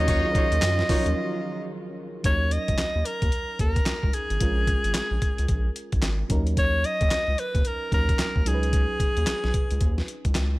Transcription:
Already playing: analog synth bass D#2, string section D#3 F#3 C#4 F4, fm electric piano F#3 C#4 D#4 F4 A#4, alto saxophone D#5
0.08 horn section D#4 F4 F#4 C#5, kick, closed hi-hat, tambourine
0.24 fm electric piano F#3 C#4 D#4 F4 G#4
0.32 horn section D#4 F4 F#4 C#5, fm electric piano A#4, kick, closed hi-hat
0.52 analog synth bass D#2, closed hi-hat
0.62 analog synth bass F#2, snare, clap, closed hi-hat, tambourine
0.79 snare
0.89 fm electric piano F3 C#4 D#4 F4 A#4, horn section D#4 F4 F#4 C#5, kick, open hi-hat, tambourine
0.95 fm electric piano F#3
1.06 analog synth bass D#2, closed hi-hat
2.23 analog synth bass D#2, fm electric piano F#3 C#4 D#4 A#4, alto saxophone C#5, kick, closed hi-hat
2.51 alto saxophone D#5, closed hi-hat
2.68 analog synth bass C#2, kick, closed hi-hat
2.78 analog synth bass D#2, snare, clap, closed hi-hat
2.96 analog synth bass D#2
3.05 alto saxophone A#4, closed hi-hat
3.22 analog synth bass D#2, kick, closed hi-hat
3.32 closed hi-hat
3.59 analog synth bass D#2, alto saxophone A#4, kick, closed hi-hat
3.76 kick, closed hi-hat
3.86 analog synth bass C#2, snare, clap, closed hi-hat
4.03 analog synth bass C#2, kick
4.13 alto saxophone G#4, closed hi-hat
4.30 analog synth bass G#1, closed hi-hat
4.40 analog synth bass A#1, fm electric piano G#3 C#4 F4 A#4, kick, closed hi-hat
4.67 kick, closed hi-hat
4.84 analog synth bass G#1, closed hi-hat
4.94 analog synth bass A#1, snare, clap, closed hi-hat
5.11 analog synth bass A#1
5.22 kick, closed hi-hat
5.38 analog synth bass C#2, closed hi-hat
5.48 analog synth bass A#1, kick, closed hi-hat
5.76 closed hi-hat
5.92 analog synth bass A#1, kick, closed hi-hat
6.02 analog synth bass G#1, snare, clap, closed hi-hat
6.29 analog synth bass D#2, fm electric piano F#3 C#4 D#4 A#4, kick, closed hi-hat
6.47 closed hi-hat
6.57 alto saxophone C#5, kick, closed hi-hat
6.84 alto saxophone D#5, closed hi-hat
7.01 analog synth bass D#2, kick, closed hi-hat
7.11 analog synth bass C#2, snare, clap, closed hi-hat
7.28 analog synth bass C#2
7.38 alto saxophone B4, closed hi-hat
7.55 analog synth bass D#2, kick, closed hi-hat
7.65 alto saxophone A#4, closed hi-hat
7.92 analog synth bass D#2, fm electric piano F#3 C#4 D#4 A#4, alto saxophone A#4, kick, closed hi-hat
8.09 kick, closed hi-hat
8.19 analog synth bass D#2, snare, clap, closed hi-hat
8.36 analog synth bass D#2, kick
8.45 analog synth bass C#2, fm electric piano F#3 C#4 D#4 A#4, alto saxophone G#4, closed hi-hat
8.54 fm electric piano B4
8.63 closed hi-hat
8.73 kick, closed hi-hat
9.00 kick, closed hi-hat
9.17 analog synth bass D#2, closed hi-hat
9.27 analog synth bass B1, snare, clap, closed hi-hat
9.44 analog synth bass B1, snare
9.54 kick, closed hi-hat
9.71 analog synth bass C#2, closed hi-hat
9.81 analog synth bass D#2, kick, closed hi-hat
9.98 snare
10.08 closed hi-hat
10.25 analog synth bass C#2, kick, closed hi-hat
10.35 analog synth bass C#2, snare, clap, closed hi-hat

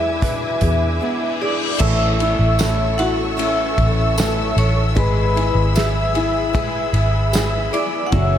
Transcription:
Already playing: fingered electric bass E2, steel-string acoustic guitar E3 G#3 D4 E4, upright piano E3 G#4 B4, string section B4 G#5 D6 E6, vibraphone E5
0.21 steel-string acoustic guitar E2 B2 E3 G#3 D4 E4, upright piano B4, kick, closed hi-hat, reverse cymbal
0.61 fingered electric bass E2, upright piano G#4, kick, closed hi-hat
1.00 steel-string acoustic guitar E3 G#3 D4 E4, upright piano B3
1.42 upright piano G#4, vibraphone D5 D6
1.79 fingered electric bass A1, steel-string acoustic guitar A2 E3 A3 C#4 E4, upright piano A3, string section A4 E5 C#6 E6, vibraphone E5 E6, kick, crash
2.19 steel-string acoustic guitar A3 C#4 E4, upright piano E4, ride
2.39 fingered electric bass A1
2.58 steel-string acoustic guitar E3 A3 C#4 E4, upright piano A3, snare, ride, tambourine
2.98 upright piano E4, vibraphone F#4 F#5, ride
3.37 steel-string acoustic guitar A2 E3 A3 C#4 E4, vibraphone E5 E6, ride
3.78 fingered electric bass A1, kick, ride
4.16 steel-string acoustic guitar E3 A3 C#4 E4, upright piano A3, snare, ride, tambourine
4.57 fingered electric bass A1, vibraphone C#5 C#6, ride
4.95 fingered electric bass G#1, steel-string acoustic guitar G#3 B3 E4 G#4, upright piano G#3, string section G#4 B5, vibraphone B4 B5, kick, ride
5.34 steel-string acoustic guitar B3 E4 G#4, upright piano E4, ride
5.55 fingered electric bass G#1
5.74 steel-string acoustic guitar G#3 B3 E4 G#4, upright piano G#4, vibraphone E5 E6, snare, ride, tambourine
6.14 steel-string acoustic guitar B3 E4 G#4, upright piano E4, ride
6.53 steel-string acoustic guitar G#3 B3 E4 G#4, kick, ride
6.93 fingered electric bass G#1, ride
7.32 steel-string acoustic guitar G#3 B3 E4 G#4, upright piano G#4, snare, ride, tambourine
7.71 steel-string acoustic guitar B3 E4 G#4, vibraphone D5 D6, ride
8.07 vibraphone F#5
8.12 fingered electric bass F#1, steel-string acoustic guitar F#2 C#3 F#3 A3 C#4 G#4, upright piano F#3, string section A3 F#5 G#5 C#6, vibraphone E5 E6, kick, ride

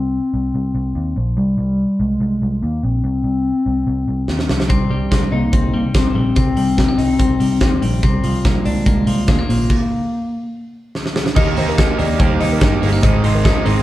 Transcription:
Already playing: picked electric bass C2, soft synth lead C4
0.34 picked electric bass C2
0.54 picked electric bass C2
0.75 picked electric bass C2
0.95 picked electric bass D#2
1.16 picked electric bass A#1, soft synth lead F3
1.37 picked electric bass C2, soft synth lead G3
1.58 picked electric bass C2, soft synth lead G3
2.00 picked electric bass C2, soft synth lead G#3
2.20 picked electric bass C2
2.42 picked electric bass C2
2.62 picked electric bass D#2, soft synth lead A#3
2.83 picked electric bass A#1, soft synth lead C4
3.04 picked electric bass C2
3.24 picked electric bass C2
3.66 picked electric bass C2
3.87 picked electric bass C2
4.08 picked electric bass C2
4.28 picked electric bass D#2, snare
4.39 snare
4.49 picked electric bass C2, soft synth lead F3, snare
4.60 snare
4.69 clean electric guitar C3, soft synth lead G3, kick, closed hi-hat
4.90 picked electric bass C2, clean electric guitar G3, soft synth lead G3
5.11 clean electric guitar C4, kick, snare, closed hi-hat
5.32 picked electric bass C2, soft synth lead A#3, clean electric guitar D#4
5.53 picked electric bass C2, clean electric guitar C4, kick, closed hi-hat
5.73 picked electric bass C2, clean electric guitar G3, soft synth lead A#3
5.94 picked electric bass C2, clean electric guitar C4, soft synth lead C4, kick, snare, closed hi-hat
6.15 picked electric bass A#1, clean electric guitar G3, soft synth lead C4
6.36 picked electric bass C2, clean electric guitar C3, kick, closed hi-hat
6.56 picked electric bass C2, clean electric guitar G3, open hi-hat
6.78 clean electric guitar A#3, kick, snare
6.88 clean electric guitar C4
6.98 picked electric bass C2, clean electric guitar D#4, open hi-hat
7.19 picked electric bass C2, clean electric guitar C4, kick, closed hi-hat
7.40 picked electric bass C2, clean electric guitar G3, open hi-hat
7.61 picked electric bass D#2, clean electric guitar C4, kick, snare, closed hi-hat
7.82 picked electric bass A#1, soft synth lead F3, clean electric guitar G3, open hi-hat
8.03 picked electric bass C2, clean electric guitar C3, soft synth lead G3, kick, closed hi-hat
8.23 picked electric bass C2, clean electric guitar F3, soft synth lead G3, open hi-hat
8.45 soft synth lead G3, clean electric guitar A#3, kick, snare, closed hi-hat
8.65 picked electric bass C2, soft synth lead G#3, clean electric guitar D4, open hi-hat
8.86 picked electric bass C2, clean electric guitar A#3, kick, closed hi-hat
9.07 picked electric bass C2, clean electric guitar F3, open hi-hat
9.28 picked electric bass D2, clean electric guitar G#3, soft synth lead A#3, kick, snare, closed hi-hat
9.39 clean electric guitar A#3
9.49 picked electric bass A#1, clean electric guitar F3, soft synth lead A#3, open hi-hat
9.70 kick, crash
10.95 snare
11.06 snare
11.16 snare
11.26 snare
11.35 picked electric bass D#2, overdriven electric guitar D#3 A#3 D#4 G4, clean electric guitar D#3 D#4, kick, crash
11.57 picked electric bass D#2, clean electric guitar A#3, overdriven electric guitar A#3 D#4 G4, soft synth lead C5, open hi-hat
11.69 soft synth lead A#4
11.77 overdriven electric guitar D#3 A#3 D#4 G4, clean electric guitar D#4, kick, snare, closed hi-hat
11.98 picked electric bass D#2, clean electric guitar A#3, overdriven electric guitar A#3 D#4 G4, soft synth lead D5, open hi-hat
12.19 picked electric bass D#2, overdriven electric guitar D#3 A#3 D#4 G4, clean electric guitar G3, soft synth lead C5, kick, closed hi-hat
12.40 picked electric bass D#2, overdriven electric guitar A#3 D#4 G4, clean electric guitar D#4, open hi-hat
12.52 soft synth lead A#4
12.60 picked electric bass G2, overdriven electric guitar D#3 A#3 D#4 G4, clean electric guitar G3, kick, snare, closed hi-hat
12.82 picked electric bass G1, clean electric guitar G#3, overdriven electric guitar A#3 D#4 G4, soft synth lead C5, open hi-hat
12.93 clean electric guitar A#3
13.02 picked electric bass G#1, overdriven electric guitar G#2 D#3 G#3 C4 D#4, clean electric guitar G#2 D#4, kick, closed hi-hat
13.23 picked electric bass G#1, overdriven electric guitar G#3 C4 D#4, clean electric guitar C4, open hi-hat
13.35 soft synth lead A#4
13.44 overdriven electric guitar G#2 D#3 G#3 C4 D#4, clean electric guitar D#4, kick, snare, closed hi-hat
13.65 picked electric bass G#1, overdriven electric guitar G#3 C4 D#4, clean electric guitar C4, soft synth lead G#4, open hi-hat

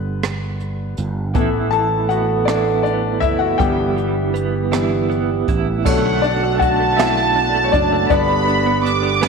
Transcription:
Already playing: fretless electric bass G1, grand piano D3 G3 B3 B4
0.23 cross-stick, closed hi-hat
0.60 closed hi-hat
0.97 fretless electric bass G1, closed hi-hat
1.34 fretless electric bass A1, grand piano E3 A3 B3, clean electric guitar E3 E4, french horn section E3 A3 B3 A4, kick, closed hi-hat
1.71 clean electric guitar E3, grand piano A4 A5, closed hi-hat
2.09 clean electric guitar B3, grand piano F#4 F#5, closed hi-hat
2.45 grand piano D4 D5, clean electric guitar E4, cross-stick, closed hi-hat
2.83 clean electric guitar B3, grand piano D4 D5, closed hi-hat
3.20 fretless electric bass F#1, clean electric guitar E4, grand piano E4 E5, kick, closed hi-hat
3.39 grand piano F#4 F#5
3.58 fretless electric bass G1, grand piano E3 G3 B3 G4 G5, clean electric guitar G3 E4, french horn section G3 G4, kick, closed hi-hat
3.97 clean electric guitar G3, closed hi-hat
4.34 clean electric guitar B3, closed hi-hat
4.71 grand piano E3 G3 B3, clean electric guitar E4, cross-stick, closed hi-hat
5.10 clean electric guitar B3, closed hi-hat
5.48 fretless electric bass A1, clean electric guitar E4, kick, closed hi-hat
5.85 fretless electric bass B1, grand piano D3 A3 C#5, french horn section D3 A3 B3 F#4, clean electric guitar A3, violin section F#5, kick, crash
6.06 clean electric guitar A3
6.22 clean electric guitar D4, grand piano D4 D5, closed hi-hat
6.43 clean electric guitar A3
6.59 clean electric guitar D4, grand piano F#4 F#5, violin section A5, kick, closed hi-hat
6.80 clean electric guitar A3
6.97 clean electric guitar A3, grand piano E4 E5, snare, closed hi-hat
7.17 clean electric guitar A3
7.35 clean electric guitar D4, closed hi-hat
7.54 clean electric guitar A3
7.64 grand piano C#5
7.72 fretless electric bass F#1, grand piano D4 D5, clean electric guitar D4, kick, closed hi-hat
7.92 clean electric guitar A3
8.09 fretless electric bass G1, grand piano D3 G3 B3 D4 D5, french horn section G3 G4, clean electric guitar B3, violin section B5, kick, closed hi-hat
8.29 clean electric guitar B3
8.48 clean electric guitar D4, closed hi-hat
8.66 clean electric guitar B3
8.84 clean electric guitar D4, violin section D6, closed hi-hat
9.03 clean electric guitar B3
9.21 clean electric guitar B3, snare, closed hi-hat

